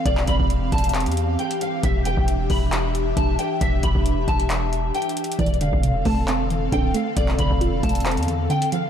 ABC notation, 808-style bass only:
X:1
M:4/4
L:1/16
Q:1/4=135
K:Ddor
V:1 name="808-style bass" clef=bass
E,,,2 E,,, E,,,3 E,,,3 E,,3 z4 | E,,,3 E,,,3 E,,,6 E,,,2 z2 | E,,,2 E,,, E,,,3 E,,,6 z4 | E,,,3 E,,,3 E,,,6 D,,,2 z2 |
E,,,2 E,,, E,,,3 E,,,3 E,,3 z4 |]